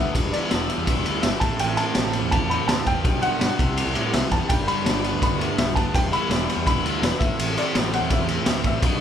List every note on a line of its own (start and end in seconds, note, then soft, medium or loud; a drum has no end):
0.00 0.13 D2 medium
0.00 0.15 G2 medium
0.00 0.13 D3 medium
0.00 0.14 G3 medium
0.00 0.70 G3 medium
0.00 0.14 B3 medium
0.00 0.16 B3 medium
0.00 0.16 D4 medium
0.00 0.16 F#4 medium
0.00 0.34 E5 medium
0.13 0.32 E1 medium
0.13 1.07 E2 medium
0.13 1.41 E3 medium
0.13 1.42 G3 medium
0.13 1.42 B3 medium
0.13 1.42 E4 medium
0.13 kick loud
0.13 ride medium
0.32 0.87 E4 medium
0.32 1.26 D5 medium
0.32 ride medium
0.51 0.68 E1 medium
0.51 1.05 D4 medium
0.51 snare loud
0.51 ride medium
0.70 1.45 G3 medium
0.70 ride medium
0.78 0.87 E2 medium
0.87 1.42 E4 medium
0.87 kick loud
0.87 ride medium
0.97 1.05 E1 medium
1.05 1.22 D2 medium
1.05 1.42 D4 medium
1.05 ride medium
1.22 1.31 G1 medium
1.22 1.42 E3 medium
1.22 1.40 E5 medium
1.22 snare loud
1.22 ride loud
1.40 1.50 A1 medium
1.40 3.04 A2 medium
1.40 1.59 A2 medium
1.40 3.03 E3 medium
1.40 3.05 A3 medium
1.40 3.06 C4 medium
1.40 1.60 A5 medium
1.40 kick medium
1.40 ride medium
1.45 3.06 E4 medium
1.59 1.76 A1 medium
1.59 2.51 A2 medium
1.59 1.79 G5 medium
1.59 ride loud
1.77 2.33 G4 medium
1.77 2.30 A5 loud
1.77 ride medium
1.95 2.21 A1 medium
1.95 2.50 C4 medium
1.95 snare loud
1.95 ride medium
2.13 2.87 G3 medium
2.13 ride medium
2.23 2.40 E2 medium
2.31 3.22 G4 medium
2.31 2.51 A5 medium
2.31 kick loud
2.31 ride medium
2.41 2.58 E2 medium
2.50 3.05 C4 medium
2.50 2.67 B5 medium
2.50 ride medium
2.68 2.85 D2 medium
2.68 3.05 E3 medium
2.68 2.87 A5 loud
2.68 snare loud
2.68 ride medium
2.86 3.03 E2 medium
2.86 3.25 G3 medium
2.86 3.24 G5 loud
2.86 kick medium
2.86 ride medium
3.04 3.21 B1 loud
3.04 3.59 B2 medium
3.04 3.58 B2 medium
3.04 3.60 G3 medium
3.04 3.62 B3 medium
3.04 3.60 D4 medium
3.04 kick loud
3.04 ride medium
3.22 3.59 F#4 medium
3.22 4.16 F#5 loud
3.22 ride medium
3.39 3.50 G2 medium
3.39 3.58 D4 medium
3.39 snare loud
3.39 ride medium
3.58 3.84 C2 medium
3.58 4.49 C3 medium
3.58 4.50 C3 medium
3.58 4.51 G3 medium
3.58 4.51 E4 medium
3.58 kick loud
3.58 ride medium
3.77 4.67 G4 medium
3.77 ride medium
3.86 3.95 C2 medium
3.94 4.12 A2 medium
3.94 4.85 B3 medium
3.94 ride medium
4.13 4.22 C2 medium
4.13 4.49 E3 medium
4.13 4.32 E5 medium
4.13 snare loud
4.13 ride medium
4.31 4.40 E2 medium
4.31 4.50 G3 medium
4.31 4.50 A5 medium
4.31 kick medium
4.31 ride medium
4.49 4.67 G1 medium
4.49 5.95 G2 medium
4.49 5.93 D3 medium
4.49 5.58 G3 medium
4.49 5.94 G3 medium
4.49 5.95 B3 medium
4.49 5.96 D4 medium
4.49 4.66 G5 medium
4.49 kick loud
4.49 ride medium
4.67 5.20 F#4 medium
4.67 5.21 B5 loud
4.67 ride medium
4.85 5.11 G1 medium
4.85 5.38 D4 medium
4.85 snare loud
4.85 ride medium
5.04 5.75 B3 medium
5.04 ride medium
5.13 5.30 D2 medium
5.21 5.94 F#4 medium
5.21 5.39 B5 medium
5.21 kick loud
5.21 ride medium
5.32 5.48 D2 medium
5.39 5.94 D4 medium
5.39 ride medium
5.58 5.75 B1 medium
5.58 6.48 G3 medium
5.58 5.77 E5 medium
5.58 snare loud
5.58 ride medium
5.75 5.93 D2 medium
5.75 5.94 B3 medium
5.75 5.95 A5 medium
5.75 kick medium
5.75 ride medium
5.93 6.11 E1 loud
5.93 6.85 E2 medium
5.93 7.21 E3 medium
5.93 7.23 G3 medium
5.93 7.22 B3 medium
5.93 7.22 E4 medium
5.93 6.12 G5 loud
5.93 kick loud
5.93 ride medium
6.12 6.66 E4 medium
6.12 6.63 B5 loud
6.12 ride medium
6.30 6.47 E1 medium
6.30 6.84 D4 medium
6.30 snare loud
6.30 ride medium
6.48 7.24 G3 medium
6.48 ride medium
6.57 6.66 E2 medium
6.67 7.21 E4 medium
6.67 6.84 B5 loud
6.67 kick loud
6.67 ride medium
6.74 6.83 E1 medium
6.83 7.01 D2 medium
6.83 7.21 D4 medium
6.83 ride medium
7.02 7.11 E1 medium
7.02 7.21 E3 medium
7.02 7.22 B4 medium
7.02 snare loud
7.02 ride medium
7.19 7.29 A1 loud
7.19 8.84 A2 medium
7.19 7.39 A2 medium
7.19 8.83 E3 medium
7.19 8.84 A3 medium
7.19 7.58 E5 medium
7.19 kick loud
7.19 ride medium
7.24 8.85 C4 medium
7.24 8.85 E4 medium
7.39 7.56 A1 medium
7.39 8.30 A2 medium
7.39 ride loud
7.57 8.09 E4 medium
7.57 7.91 D5 medium
7.57 ride medium
7.75 8.00 A1 medium
7.75 8.28 C4 medium
7.75 snare loud
7.75 ride medium
7.93 8.64 G3 medium
7.93 8.12 F#5 medium
7.93 ride medium
8.01 8.18 E2 medium
8.10 8.83 E4 medium
8.10 8.62 E5 medium
8.10 kick loud
8.10 ride medium
8.20 8.37 E2 medium
8.28 8.83 C4 medium
8.28 ride medium
8.46 8.64 D2 loud
8.46 8.84 E3 medium
8.46 snare loud
8.46 ride medium
8.64 8.82 A1 medium
8.64 8.84 G3 medium
8.64 9.01 E5 medium
8.64 kick medium
8.64 ride medium
8.82 9.00 B1 loud
8.82 9.01 B2 medium
8.82 9.01 G3 medium
8.82 9.01 B3 medium
8.82 9.01 D4 medium
8.82 kick loud
8.82 ride loud